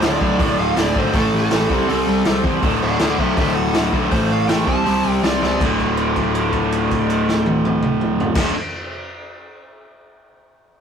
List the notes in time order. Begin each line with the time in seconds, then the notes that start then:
0.02 D2 A2 D3 D5, snare, open hi-hat
0.21 B1 D2 A2 D3, kick
0.38 D1 D2 A2 D3, kick, open hi-hat
0.58 D1 F5
0.76 D1 D2 A2 D3 D5, snare, open hi-hat
0.95 G#1 D2 A2 D3 C5, kick
1.13 A1 A2 E3 A3, kick, open hi-hat
1.17 A4
1.33 A1 A4
1.50 A1 A2 E3 A3, snare, open hi-hat
1.70 C2 C3 G3 C4, kick
1.88 C2 C3 G3 C4, open hi-hat
2.07 C2
2.25 C2 C3 G3 C4, snare, open hi-hat
2.44 E2 C3 G3 C4, kick
2.62 D1 D2 A2 D3, kick, open hi-hat
2.81 D1 D5 F#5
2.99 D2 A2 D3 D5 F#5, snare, open hi-hat
3.18 B1 D2 A2 D3 C5 E5, kick
3.37 D1 D2 A2 D3 C5 E5, kick, open hi-hat
3.55 D1 F#5
3.74 D1 D2 A2 D3, snare, open hi-hat
3.93 B1 D2 A2 D3, kick
4.11 A1 A2 E3 A3 C5, kick, open hi-hat
4.29 A1 F5
4.48 A1 A2 E3 A3 G5, snare, open hi-hat
4.66 C2 C3 G3 C4 A5, kick
4.85 C2 C3 G3 C4, open hi-hat
5.05 C2
5.09 G5
5.23 C2 C3 G3 C4 D5, snare, open hi-hat
5.41 C#2 C3 G3 C4 D5, snare
5.60 D1 D2 A2, kick, crash
5.64 D3
5.79 kick, crash
5.97 crash
6.16 kick, crash
6.35 crash
6.52 kick, crash
6.72 crash
6.91 kick, crash
7.10 crash
7.29 snare
7.46 high tom
7.65 high tom
7.83 mid tom
8.01 mid tom
8.20 floor tom
8.35 D1 D2 A2, kick, snare, crash
8.39 D3